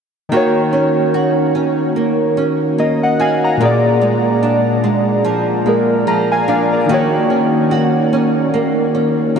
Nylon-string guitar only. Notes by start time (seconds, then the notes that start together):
0.32 D#3
0.73 C#4
1.14 F#4
1.55 C#4
1.96 A#3
2.37 C#4
2.78 A#3
3.20 F#4
3.61 A#2
4.01 G#3
4.43 D4
4.84 G#3
5.25 F3
5.66 G#3
6.07 F3
6.48 D4
6.89 D#3
7.30 C#4
7.71 F#4
8.13 C#4
8.54 A#3
8.95 C#4
9.36 A#3